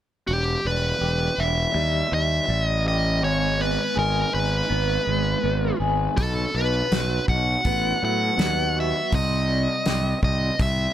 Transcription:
0.27 E1 E2 G4
0.65 E1 G3 B4
1.01 E1 G4
1.38 E1 E4 E5
1.75 D#2 G3
2.12 D#2 E5
2.48 A1 G3
2.66 D#5
2.86 G4 D#5
3.22 G#1 G#2 C#5
3.58 B3 B4
3.96 G#1 G#4 A#4
4.32 G#1 D#4 B4
4.69 G#1 B3
5.05 G#1 G#3
5.43 G#1 B3
5.80 G#1 G#4
6.17 B1 B2 A4, kick, open hi-hat
6.55 B1 B3 B4
6.92 B1 F#4, snare, open hi-hat
7.28 B1 F#5, kick
7.65 A1 B3, kick, open hi-hat
8.02 A2 F#3 F#5
8.38 D#2 B3, snare, open hi-hat
8.76 F#4 E5
9.12 C2 C3 D#5, kick, open hi-hat
9.49 G3
9.86 C2 G4, snare, open hi-hat
10.23 C2 D#5, kick
10.59 C2 E5, kick, open hi-hat

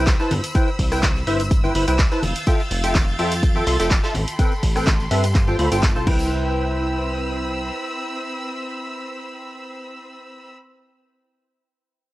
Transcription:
Already playing: C2 C5 B5 E6
0.06 kick, snare, clap, closed hi-hat, tambourine
0.20 E4 B4 C5 A5, snare, tambourine
0.31 G1, closed hi-hat, open hi-hat, high conga
0.44 closed hi-hat, tambourine
0.55 E4 B4 C5 G5, kick, closed hi-hat, tambourine
0.68 tambourine
0.79 C2, kick, open hi-hat
0.92 E4 B4 C5 G5, cross-stick, open hi-hat, tambourine
1.03 kick, snare, clap, closed hi-hat, tambourine, high conga
1.16 snare, tambourine
1.27 G1 E4 B4 C5 E5, closed hi-hat, open hi-hat
1.40 closed hi-hat, tambourine
1.51 kick, closed hi-hat, tambourine
1.64 E4 B4 C5 G5, tambourine, high conga
1.74 G1 E4 B4 C5 B5, closed hi-hat, open hi-hat
1.88 C2 E4 B4 C5 G5, closed hi-hat, tambourine
1.99 kick, snare, clap, closed hi-hat, tambourine
2.11 E4 B4 C5 A5, snare, tambourine
2.23 F1 F5 G6 A6, closed hi-hat, open hi-hat, high conga
2.36 closed hi-hat, tambourine
2.46 F4 A4 E5 G5, kick, closed hi-hat, tambourine
2.60 tambourine
2.71 F1, closed hi-hat, open hi-hat
2.84 F4 A4 E5 G5, snare, closed hi-hat, tambourine
2.95 kick, snare, clap, closed hi-hat, tambourine, high conga
3.08 tambourine
3.19 F2 F4 A4 E5 G5, closed hi-hat, open hi-hat
3.32 snare, closed hi-hat, tambourine
3.43 kick, closed hi-hat, tambourine
3.55 F4 A4 E5 G5, tambourine, high conga
3.67 C2 F4 A4 E5 C6, snare, closed hi-hat, open hi-hat
3.80 F1 F4 A4 E5 G5, snare, closed hi-hat, tambourine
3.90 kick, snare, clap, closed hi-hat, tambourine
4.04 F4 A4 E5 A5, snare, closed hi-hat, tambourine
4.15 A1 A4 G5 B5 C6, closed hi-hat, open hi-hat, high conga
4.28 closed hi-hat, tambourine
4.39 C4 A4 B4 G5, kick, closed hi-hat, tambourine
4.52 tambourine
4.63 A1, kick, open hi-hat
4.76 C4 A4 B4 G5, cross-stick, open hi-hat, tambourine
4.86 kick, snare, clap, closed hi-hat, tambourine, high conga
5.00 snare, tambourine
5.11 G2 C4 A4 B4 E5, closed hi-hat, open hi-hat
5.24 closed hi-hat, tambourine
5.35 G4 F5 A5, kick, clap, closed hi-hat, tambourine
5.47 F4 A4 C5 G5, tambourine, high conga
5.59 D2 F4 A4 C5 B5, closed hi-hat, open hi-hat
5.71 G1 F4 A4 C5 G5, snare, closed hi-hat, tambourine
5.83 kick, snare, clap, closed hi-hat, tambourine
5.96 C2 F4 A4 C5 A5, tambourine
6.07 C2 C4 E4 B4 C5 G5 B5 E6, kick, crash, high conga
6.19 tambourine

